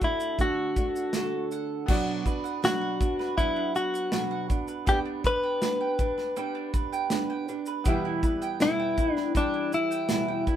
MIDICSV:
0, 0, Header, 1, 6, 480
1, 0, Start_track
1, 0, Key_signature, 2, "minor"
1, 0, Tempo, 747198
1, 1212, Time_signature, 4, 2, 24, 8
1, 6786, End_track
2, 0, Start_track
2, 0, Title_t, "Mandolin"
2, 0, Program_c, 0, 25
2, 0, Note_on_c, 0, 57, 84
2, 0, Note_on_c, 0, 69, 59
2, 14, Note_on_c, 0, 62, 61
2, 245, Note_off_c, 0, 69, 0
2, 252, Note_on_c, 0, 69, 59
2, 491, Note_off_c, 0, 62, 0
2, 493, Note_on_c, 0, 62, 56
2, 729, Note_off_c, 0, 69, 0
2, 737, Note_on_c, 0, 69, 60
2, 977, Note_on_c, 0, 78, 63
2, 1211, Note_off_c, 0, 57, 0
2, 1213, Note_on_c, 0, 59, 83
2, 1216, Note_off_c, 0, 78, 0
2, 1218, Note_on_c, 0, 78, 59
2, 1263, Note_off_c, 0, 69, 0
2, 1327, Note_off_c, 0, 62, 0
2, 1329, Note_on_c, 0, 62, 53
2, 1451, Note_on_c, 0, 71, 62
2, 1559, Note_off_c, 0, 78, 0
2, 1567, Note_on_c, 0, 78, 69
2, 1683, Note_off_c, 0, 71, 0
2, 1685, Note_on_c, 0, 71, 57
2, 1799, Note_off_c, 0, 78, 0
2, 1807, Note_on_c, 0, 78, 65
2, 1929, Note_off_c, 0, 62, 0
2, 1931, Note_on_c, 0, 62, 66
2, 2049, Note_off_c, 0, 71, 0
2, 2051, Note_on_c, 0, 71, 58
2, 2166, Note_off_c, 0, 59, 0
2, 2166, Note_off_c, 0, 78, 0
2, 2169, Note_on_c, 0, 59, 79
2, 2174, Note_on_c, 0, 78, 70
2, 2286, Note_off_c, 0, 62, 0
2, 2289, Note_on_c, 0, 62, 63
2, 2404, Note_off_c, 0, 71, 0
2, 2406, Note_on_c, 0, 71, 61
2, 2521, Note_off_c, 0, 78, 0
2, 2529, Note_on_c, 0, 78, 63
2, 2647, Note_off_c, 0, 71, 0
2, 2649, Note_on_c, 0, 71, 62
2, 2760, Note_off_c, 0, 78, 0
2, 2768, Note_on_c, 0, 78, 64
2, 2885, Note_off_c, 0, 62, 0
2, 2888, Note_on_c, 0, 62, 59
2, 3004, Note_off_c, 0, 71, 0
2, 3007, Note_on_c, 0, 71, 57
2, 3123, Note_off_c, 0, 59, 0
2, 3125, Note_on_c, 0, 55, 82
2, 3127, Note_off_c, 0, 78, 0
2, 3129, Note_on_c, 0, 79, 74
2, 3244, Note_off_c, 0, 62, 0
2, 3247, Note_on_c, 0, 62, 54
2, 3365, Note_off_c, 0, 71, 0
2, 3368, Note_on_c, 0, 71, 64
2, 3489, Note_off_c, 0, 79, 0
2, 3491, Note_on_c, 0, 79, 69
2, 3608, Note_off_c, 0, 71, 0
2, 3611, Note_on_c, 0, 71, 60
2, 3727, Note_off_c, 0, 79, 0
2, 3730, Note_on_c, 0, 79, 67
2, 3842, Note_off_c, 0, 62, 0
2, 3850, Note_on_c, 0, 62, 63
2, 3965, Note_off_c, 0, 71, 0
2, 3968, Note_on_c, 0, 71, 57
2, 4086, Note_off_c, 0, 55, 0
2, 4089, Note_off_c, 0, 79, 0
2, 4089, Note_on_c, 0, 55, 81
2, 4092, Note_on_c, 0, 79, 72
2, 4199, Note_off_c, 0, 62, 0
2, 4207, Note_on_c, 0, 62, 62
2, 4325, Note_off_c, 0, 71, 0
2, 4328, Note_on_c, 0, 71, 64
2, 4447, Note_off_c, 0, 79, 0
2, 4449, Note_on_c, 0, 79, 63
2, 4568, Note_off_c, 0, 71, 0
2, 4571, Note_on_c, 0, 71, 66
2, 4686, Note_off_c, 0, 79, 0
2, 4688, Note_on_c, 0, 79, 62
2, 4802, Note_off_c, 0, 62, 0
2, 4810, Note_on_c, 0, 62, 59
2, 4927, Note_off_c, 0, 71, 0
2, 4929, Note_on_c, 0, 71, 62
2, 5045, Note_off_c, 0, 55, 0
2, 5048, Note_on_c, 0, 55, 85
2, 5050, Note_off_c, 0, 79, 0
2, 5053, Note_on_c, 0, 79, 66
2, 5098, Note_off_c, 0, 62, 0
2, 5172, Note_on_c, 0, 64, 59
2, 5285, Note_off_c, 0, 71, 0
2, 5287, Note_on_c, 0, 71, 61
2, 5399, Note_off_c, 0, 79, 0
2, 5407, Note_on_c, 0, 79, 74
2, 5521, Note_off_c, 0, 71, 0
2, 5529, Note_on_c, 0, 71, 59
2, 5643, Note_off_c, 0, 79, 0
2, 5650, Note_on_c, 0, 79, 62
2, 5761, Note_off_c, 0, 64, 0
2, 5768, Note_on_c, 0, 64, 60
2, 5882, Note_off_c, 0, 71, 0
2, 5889, Note_on_c, 0, 71, 57
2, 6002, Note_off_c, 0, 55, 0
2, 6006, Note_off_c, 0, 79, 0
2, 6010, Note_on_c, 0, 55, 83
2, 6013, Note_on_c, 0, 79, 65
2, 6120, Note_off_c, 0, 64, 0
2, 6128, Note_on_c, 0, 64, 57
2, 6239, Note_off_c, 0, 71, 0
2, 6246, Note_on_c, 0, 71, 60
2, 6357, Note_off_c, 0, 79, 0
2, 6365, Note_on_c, 0, 79, 65
2, 6476, Note_off_c, 0, 71, 0
2, 6484, Note_on_c, 0, 71, 63
2, 6598, Note_off_c, 0, 79, 0
2, 6606, Note_on_c, 0, 79, 65
2, 6718, Note_off_c, 0, 64, 0
2, 6725, Note_on_c, 0, 64, 60
2, 6786, Note_off_c, 0, 55, 0
2, 6786, Note_off_c, 0, 64, 0
2, 6786, Note_off_c, 0, 71, 0
2, 6786, Note_off_c, 0, 79, 0
2, 6786, End_track
3, 0, Start_track
3, 0, Title_t, "Upright piano"
3, 0, Program_c, 1, 0
3, 0, Control_c, 1, 64, 127
3, 0, Note_on_c, 1, 57, 58
3, 0, Note_on_c, 1, 66, 57
3, 0, Note_on_c, 1, 74, 69
3, 1180, Note_off_c, 1, 57, 0
3, 1186, Note_off_c, 1, 66, 0
3, 1193, Note_off_c, 1, 74, 0
3, 1194, Note_on_c, 1, 59, 75
3, 1207, Note_on_c, 1, 66, 63
3, 1219, Control_c, 1, 64, 0
3, 1221, Note_on_c, 1, 74, 84
3, 1314, Control_c, 1, 64, 127
3, 3097, Note_off_c, 1, 59, 0
3, 3104, Note_off_c, 1, 66, 0
3, 3111, Note_off_c, 1, 74, 0
3, 3119, Note_on_c, 1, 59, 60
3, 3130, Note_on_c, 1, 67, 59
3, 3141, Control_c, 1, 64, 0
3, 3144, Note_on_c, 1, 74, 72
3, 3271, Control_c, 1, 64, 127
3, 5018, Note_off_c, 1, 59, 0
3, 5024, Note_off_c, 1, 67, 0
3, 5031, Note_off_c, 1, 74, 0
3, 5037, Note_on_c, 1, 59, 75
3, 5051, Note_on_c, 1, 67, 70
3, 5059, Control_c, 1, 64, 0
3, 5061, Note_on_c, 1, 76, 85
3, 5170, Control_c, 1, 64, 127
3, 6786, Note_off_c, 1, 59, 0
3, 6786, Note_off_c, 1, 67, 0
3, 6786, Note_off_c, 1, 76, 0
3, 6786, End_track
4, 0, Start_track
4, 0, Title_t, "Clean electric guitar"
4, 0, Program_c, 2, 27
4, 28, Note_on_c, 2, 64, 84
4, 243, Note_off_c, 2, 64, 0
4, 264, Note_on_c, 2, 66, 90
4, 953, Note_off_c, 2, 66, 0
4, 1702, Note_on_c, 2, 66, 104
4, 2151, Note_off_c, 2, 66, 0
4, 2169, Note_on_c, 2, 64, 96
4, 2393, Note_off_c, 2, 64, 0
4, 2415, Note_on_c, 2, 66, 92
4, 2868, Note_off_c, 2, 66, 0
4, 3140, Note_on_c, 2, 67, 93
4, 3204, Note_off_c, 2, 67, 0
4, 3383, Note_on_c, 2, 71, 106
4, 4311, Note_off_c, 2, 71, 0
4, 5539, Note_on_c, 2, 64, 104
4, 5873, Note_off_c, 2, 64, 0
4, 5873, Note_on_c, 2, 62, 104
4, 5988, Note_off_c, 2, 62, 0
4, 6020, Note_on_c, 2, 62, 98
4, 6257, Note_off_c, 2, 62, 0
4, 6259, Note_on_c, 2, 64, 91
4, 6708, Note_off_c, 2, 64, 0
4, 6786, End_track
5, 0, Start_track
5, 0, Title_t, "Nylon-string guitar"
5, 0, Program_c, 3, 24
5, 13, Note_on_c, 3, 66, 49
5, 20, Note_on_c, 3, 62, 43
5, 25, Note_on_c, 3, 57, 41
5, 243, Note_off_c, 3, 57, 0
5, 247, Note_off_c, 3, 62, 0
5, 247, Note_on_c, 3, 50, 81
5, 250, Note_off_c, 3, 66, 0
5, 251, Note_on_c, 3, 57, 74
5, 255, Note_on_c, 3, 62, 76
5, 257, Note_on_c, 3, 66, 82
5, 482, Note_off_c, 3, 66, 0
5, 489, Note_off_c, 3, 50, 0
5, 490, Note_on_c, 3, 66, 53
5, 491, Note_off_c, 3, 57, 0
5, 492, Note_off_c, 3, 62, 0
5, 500, Note_on_c, 3, 62, 54
5, 506, Note_on_c, 3, 57, 50
5, 729, Note_off_c, 3, 57, 0
5, 731, Note_off_c, 3, 66, 0
5, 732, Note_on_c, 3, 50, 57
5, 733, Note_off_c, 3, 62, 0
5, 737, Note_on_c, 3, 57, 68
5, 741, Note_on_c, 3, 62, 64
5, 746, Note_on_c, 3, 66, 64
5, 1209, Note_off_c, 3, 50, 0
5, 1211, Note_off_c, 3, 57, 0
5, 1211, Note_on_c, 3, 47, 89
5, 1211, Note_on_c, 3, 54, 96
5, 1214, Note_on_c, 3, 59, 96
5, 1215, Note_off_c, 3, 62, 0
5, 1217, Note_off_c, 3, 66, 0
5, 1217, Note_on_c, 3, 62, 94
5, 1219, Note_on_c, 3, 66, 99
5, 1443, Note_off_c, 3, 66, 0
5, 1450, Note_off_c, 3, 62, 0
5, 1451, Note_off_c, 3, 47, 0
5, 1451, Note_on_c, 3, 66, 54
5, 1452, Note_off_c, 3, 54, 0
5, 1453, Note_off_c, 3, 59, 0
5, 1458, Note_on_c, 3, 62, 52
5, 1463, Note_on_c, 3, 59, 49
5, 1685, Note_off_c, 3, 59, 0
5, 1687, Note_off_c, 3, 62, 0
5, 1687, Note_on_c, 3, 47, 83
5, 1689, Note_off_c, 3, 66, 0
5, 1691, Note_on_c, 3, 54, 89
5, 1693, Note_on_c, 3, 59, 79
5, 1695, Note_on_c, 3, 62, 86
5, 1697, Note_on_c, 3, 66, 86
5, 1921, Note_off_c, 3, 66, 0
5, 1929, Note_off_c, 3, 47, 0
5, 1929, Note_on_c, 3, 66, 52
5, 1930, Note_off_c, 3, 62, 0
5, 1931, Note_off_c, 3, 54, 0
5, 1932, Note_off_c, 3, 59, 0
5, 1937, Note_on_c, 3, 62, 48
5, 1942, Note_on_c, 3, 59, 44
5, 2166, Note_off_c, 3, 59, 0
5, 2169, Note_on_c, 3, 54, 63
5, 2170, Note_off_c, 3, 66, 0
5, 2171, Note_off_c, 3, 62, 0
5, 2174, Note_on_c, 3, 59, 61
5, 2179, Note_on_c, 3, 62, 67
5, 2183, Note_on_c, 3, 66, 61
5, 2640, Note_off_c, 3, 54, 0
5, 2646, Note_on_c, 3, 47, 78
5, 2647, Note_off_c, 3, 59, 0
5, 2647, Note_on_c, 3, 54, 84
5, 2648, Note_off_c, 3, 66, 0
5, 2650, Note_on_c, 3, 59, 77
5, 2652, Note_off_c, 3, 62, 0
5, 2654, Note_on_c, 3, 62, 84
5, 2656, Note_on_c, 3, 66, 96
5, 2878, Note_off_c, 3, 66, 0
5, 2884, Note_off_c, 3, 62, 0
5, 2886, Note_on_c, 3, 66, 60
5, 2889, Note_off_c, 3, 47, 0
5, 2889, Note_off_c, 3, 54, 0
5, 2891, Note_off_c, 3, 59, 0
5, 2891, Note_on_c, 3, 62, 47
5, 2898, Note_on_c, 3, 59, 48
5, 3123, Note_off_c, 3, 59, 0
5, 3128, Note_off_c, 3, 62, 0
5, 3128, Note_off_c, 3, 66, 0
5, 3131, Note_on_c, 3, 59, 77
5, 3135, Note_on_c, 3, 62, 87
5, 3137, Note_on_c, 3, 67, 89
5, 3140, Note_on_c, 3, 71, 89
5, 3358, Note_off_c, 3, 71, 0
5, 3365, Note_on_c, 3, 71, 54
5, 3367, Note_off_c, 3, 67, 0
5, 3371, Note_off_c, 3, 59, 0
5, 3373, Note_off_c, 3, 62, 0
5, 3382, Note_on_c, 3, 62, 40
5, 3604, Note_off_c, 3, 62, 0
5, 3608, Note_off_c, 3, 71, 0
5, 3608, Note_on_c, 3, 59, 81
5, 3612, Note_on_c, 3, 62, 82
5, 3616, Note_on_c, 3, 67, 78
5, 3618, Note_on_c, 3, 71, 92
5, 3843, Note_off_c, 3, 71, 0
5, 3848, Note_off_c, 3, 67, 0
5, 3849, Note_off_c, 3, 59, 0
5, 3850, Note_on_c, 3, 71, 57
5, 3852, Note_off_c, 3, 62, 0
5, 3856, Note_on_c, 3, 67, 55
5, 3862, Note_on_c, 3, 62, 48
5, 4085, Note_off_c, 3, 62, 0
5, 4089, Note_on_c, 3, 59, 63
5, 4091, Note_off_c, 3, 67, 0
5, 4091, Note_off_c, 3, 71, 0
5, 4093, Note_on_c, 3, 62, 72
5, 4098, Note_on_c, 3, 67, 65
5, 4101, Note_on_c, 3, 71, 78
5, 4562, Note_off_c, 3, 62, 0
5, 4564, Note_off_c, 3, 59, 0
5, 4566, Note_on_c, 3, 59, 84
5, 4570, Note_off_c, 3, 67, 0
5, 4570, Note_on_c, 3, 62, 91
5, 4573, Note_on_c, 3, 67, 97
5, 4574, Note_off_c, 3, 71, 0
5, 4577, Note_on_c, 3, 71, 99
5, 4800, Note_off_c, 3, 71, 0
5, 4807, Note_off_c, 3, 67, 0
5, 4808, Note_off_c, 3, 59, 0
5, 4808, Note_on_c, 3, 71, 59
5, 4810, Note_off_c, 3, 62, 0
5, 4815, Note_on_c, 3, 67, 56
5, 4819, Note_on_c, 3, 62, 52
5, 5047, Note_on_c, 3, 40, 95
5, 5048, Note_on_c, 3, 47, 90
5, 5049, Note_off_c, 3, 71, 0
5, 5051, Note_off_c, 3, 62, 0
5, 5051, Note_off_c, 3, 67, 0
5, 5051, Note_on_c, 3, 52, 98
5, 5053, Note_on_c, 3, 55, 89
5, 5054, Note_on_c, 3, 59, 97
5, 5055, Note_on_c, 3, 64, 96
5, 5280, Note_off_c, 3, 64, 0
5, 5286, Note_off_c, 3, 59, 0
5, 5287, Note_on_c, 3, 64, 66
5, 5289, Note_off_c, 3, 40, 0
5, 5289, Note_off_c, 3, 47, 0
5, 5290, Note_off_c, 3, 55, 0
5, 5291, Note_off_c, 3, 52, 0
5, 5293, Note_on_c, 3, 59, 61
5, 5298, Note_on_c, 3, 55, 57
5, 5304, Note_on_c, 3, 52, 53
5, 5529, Note_off_c, 3, 52, 0
5, 5529, Note_off_c, 3, 64, 0
5, 5530, Note_off_c, 3, 55, 0
5, 5531, Note_on_c, 3, 40, 81
5, 5532, Note_off_c, 3, 59, 0
5, 5533, Note_on_c, 3, 47, 82
5, 5537, Note_on_c, 3, 52, 85
5, 5538, Note_on_c, 3, 55, 81
5, 5540, Note_on_c, 3, 59, 88
5, 5541, Note_on_c, 3, 64, 92
5, 5767, Note_off_c, 3, 64, 0
5, 5770, Note_off_c, 3, 40, 0
5, 5772, Note_off_c, 3, 47, 0
5, 5772, Note_off_c, 3, 59, 0
5, 5773, Note_off_c, 3, 52, 0
5, 5774, Note_off_c, 3, 55, 0
5, 5775, Note_on_c, 3, 64, 58
5, 5780, Note_on_c, 3, 59, 57
5, 5783, Note_on_c, 3, 55, 43
5, 5788, Note_on_c, 3, 52, 41
5, 6006, Note_off_c, 3, 52, 0
5, 6012, Note_off_c, 3, 64, 0
5, 6013, Note_off_c, 3, 55, 0
5, 6013, Note_on_c, 3, 52, 57
5, 6015, Note_off_c, 3, 59, 0
5, 6020, Note_on_c, 3, 55, 62
5, 6023, Note_on_c, 3, 59, 60
5, 6029, Note_on_c, 3, 64, 70
5, 6484, Note_off_c, 3, 52, 0
5, 6486, Note_off_c, 3, 55, 0
5, 6487, Note_off_c, 3, 59, 0
5, 6487, Note_on_c, 3, 40, 90
5, 6488, Note_off_c, 3, 64, 0
5, 6490, Note_on_c, 3, 47, 86
5, 6492, Note_on_c, 3, 52, 86
5, 6493, Note_on_c, 3, 55, 92
5, 6495, Note_on_c, 3, 59, 81
5, 6495, Note_on_c, 3, 64, 88
5, 6720, Note_off_c, 3, 64, 0
5, 6725, Note_off_c, 3, 59, 0
5, 6728, Note_off_c, 3, 40, 0
5, 6728, Note_on_c, 3, 64, 54
5, 6730, Note_off_c, 3, 47, 0
5, 6730, Note_off_c, 3, 52, 0
5, 6731, Note_off_c, 3, 55, 0
5, 6732, Note_on_c, 3, 59, 54
5, 6738, Note_on_c, 3, 55, 52
5, 6742, Note_on_c, 3, 52, 45
5, 6786, Note_off_c, 3, 52, 0
5, 6786, Note_off_c, 3, 55, 0
5, 6786, Note_off_c, 3, 59, 0
5, 6786, Note_off_c, 3, 64, 0
5, 6786, End_track
6, 0, Start_track
6, 0, Title_t, "Drums"
6, 9, Note_on_c, 9, 82, 51
6, 10, Note_on_c, 9, 36, 86
6, 74, Note_off_c, 9, 36, 0
6, 74, Note_off_c, 9, 82, 0
6, 129, Note_on_c, 9, 82, 45
6, 193, Note_off_c, 9, 82, 0
6, 248, Note_on_c, 9, 36, 92
6, 250, Note_on_c, 9, 82, 62
6, 313, Note_off_c, 9, 36, 0
6, 314, Note_off_c, 9, 82, 0
6, 491, Note_on_c, 9, 36, 91
6, 491, Note_on_c, 9, 82, 54
6, 555, Note_off_c, 9, 36, 0
6, 555, Note_off_c, 9, 82, 0
6, 616, Note_on_c, 9, 82, 52
6, 680, Note_off_c, 9, 82, 0
6, 726, Note_on_c, 9, 38, 98
6, 728, Note_on_c, 9, 82, 63
6, 790, Note_off_c, 9, 38, 0
6, 792, Note_off_c, 9, 82, 0
6, 972, Note_on_c, 9, 82, 46
6, 1036, Note_off_c, 9, 82, 0
6, 1209, Note_on_c, 9, 49, 94
6, 1211, Note_on_c, 9, 36, 107
6, 1273, Note_off_c, 9, 49, 0
6, 1275, Note_off_c, 9, 36, 0
6, 1450, Note_on_c, 9, 36, 84
6, 1453, Note_on_c, 9, 82, 51
6, 1514, Note_off_c, 9, 36, 0
6, 1517, Note_off_c, 9, 82, 0
6, 1575, Note_on_c, 9, 82, 45
6, 1639, Note_off_c, 9, 82, 0
6, 1695, Note_on_c, 9, 38, 105
6, 1695, Note_on_c, 9, 82, 68
6, 1759, Note_off_c, 9, 38, 0
6, 1759, Note_off_c, 9, 82, 0
6, 1931, Note_on_c, 9, 36, 95
6, 1934, Note_on_c, 9, 82, 52
6, 1996, Note_off_c, 9, 36, 0
6, 1998, Note_off_c, 9, 82, 0
6, 2055, Note_on_c, 9, 38, 34
6, 2119, Note_off_c, 9, 38, 0
6, 2170, Note_on_c, 9, 36, 95
6, 2173, Note_on_c, 9, 82, 66
6, 2234, Note_off_c, 9, 36, 0
6, 2237, Note_off_c, 9, 82, 0
6, 2413, Note_on_c, 9, 82, 55
6, 2477, Note_off_c, 9, 82, 0
6, 2537, Note_on_c, 9, 82, 52
6, 2602, Note_off_c, 9, 82, 0
6, 2646, Note_on_c, 9, 38, 115
6, 2648, Note_on_c, 9, 82, 70
6, 2710, Note_off_c, 9, 38, 0
6, 2712, Note_off_c, 9, 82, 0
6, 2890, Note_on_c, 9, 36, 95
6, 2892, Note_on_c, 9, 82, 43
6, 2954, Note_off_c, 9, 36, 0
6, 2956, Note_off_c, 9, 82, 0
6, 3004, Note_on_c, 9, 82, 57
6, 3069, Note_off_c, 9, 82, 0
6, 3130, Note_on_c, 9, 36, 118
6, 3130, Note_on_c, 9, 82, 78
6, 3194, Note_off_c, 9, 36, 0
6, 3194, Note_off_c, 9, 82, 0
6, 3369, Note_on_c, 9, 36, 95
6, 3372, Note_on_c, 9, 82, 53
6, 3433, Note_off_c, 9, 36, 0
6, 3436, Note_off_c, 9, 82, 0
6, 3609, Note_on_c, 9, 38, 103
6, 3609, Note_on_c, 9, 82, 68
6, 3673, Note_off_c, 9, 38, 0
6, 3673, Note_off_c, 9, 82, 0
6, 3847, Note_on_c, 9, 82, 53
6, 3848, Note_on_c, 9, 36, 92
6, 3911, Note_off_c, 9, 82, 0
6, 3912, Note_off_c, 9, 36, 0
6, 3969, Note_on_c, 9, 38, 32
6, 4034, Note_off_c, 9, 38, 0
6, 4088, Note_on_c, 9, 82, 69
6, 4153, Note_off_c, 9, 82, 0
6, 4328, Note_on_c, 9, 36, 93
6, 4329, Note_on_c, 9, 82, 52
6, 4393, Note_off_c, 9, 36, 0
6, 4393, Note_off_c, 9, 82, 0
6, 4453, Note_on_c, 9, 82, 59
6, 4517, Note_off_c, 9, 82, 0
6, 4562, Note_on_c, 9, 38, 113
6, 4564, Note_on_c, 9, 82, 68
6, 4626, Note_off_c, 9, 38, 0
6, 4628, Note_off_c, 9, 82, 0
6, 4807, Note_on_c, 9, 82, 45
6, 4871, Note_off_c, 9, 82, 0
6, 4920, Note_on_c, 9, 82, 59
6, 4985, Note_off_c, 9, 82, 0
6, 5044, Note_on_c, 9, 82, 75
6, 5047, Note_on_c, 9, 36, 106
6, 5108, Note_off_c, 9, 82, 0
6, 5111, Note_off_c, 9, 36, 0
6, 5287, Note_on_c, 9, 36, 98
6, 5287, Note_on_c, 9, 82, 50
6, 5351, Note_off_c, 9, 36, 0
6, 5351, Note_off_c, 9, 82, 0
6, 5409, Note_on_c, 9, 82, 48
6, 5473, Note_off_c, 9, 82, 0
6, 5526, Note_on_c, 9, 38, 101
6, 5526, Note_on_c, 9, 82, 73
6, 5591, Note_off_c, 9, 38, 0
6, 5591, Note_off_c, 9, 82, 0
6, 5766, Note_on_c, 9, 82, 56
6, 5767, Note_on_c, 9, 36, 89
6, 5831, Note_off_c, 9, 36, 0
6, 5831, Note_off_c, 9, 82, 0
6, 5890, Note_on_c, 9, 38, 32
6, 5954, Note_off_c, 9, 38, 0
6, 6006, Note_on_c, 9, 36, 99
6, 6009, Note_on_c, 9, 82, 63
6, 6070, Note_off_c, 9, 36, 0
6, 6073, Note_off_c, 9, 82, 0
6, 6248, Note_on_c, 9, 82, 55
6, 6312, Note_off_c, 9, 82, 0
6, 6370, Note_on_c, 9, 82, 57
6, 6434, Note_off_c, 9, 82, 0
6, 6480, Note_on_c, 9, 38, 119
6, 6482, Note_on_c, 9, 82, 69
6, 6544, Note_off_c, 9, 38, 0
6, 6546, Note_off_c, 9, 82, 0
6, 6726, Note_on_c, 9, 82, 43
6, 6727, Note_on_c, 9, 36, 83
6, 6786, Note_off_c, 9, 36, 0
6, 6786, Note_off_c, 9, 82, 0
6, 6786, End_track
0, 0, End_of_file